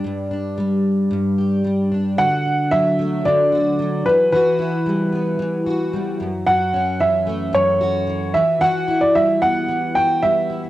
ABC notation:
X:1
M:4/4
L:1/16
Q:1/4=112
K:Edor
V:1 name="Upright piano"
d12 z4 | f4 e4 d6 B2 | B12- B2 z2 | f4 e4 c6 e2 |
f3 d e2 f4 g2 e3 z |]
V:2 name="Steel-string acoustic guitar" clef=bass
[G,,G,DG]2 D2 G,4 G,,2 G2 G,2 D2 | [D,F]2 D2 F,2 A,2 D,2 F2 F,2 E,2 | [E,F]2 E2 G,2 B,2 E,2 F2 G,2 F,,2 | [F,,F]2 C2 E,2 A,2 F,,2 F2 E,2 E,2 |
[E,F]2 E2 G,2 B,2 E,2 F2 G,2 E2 |]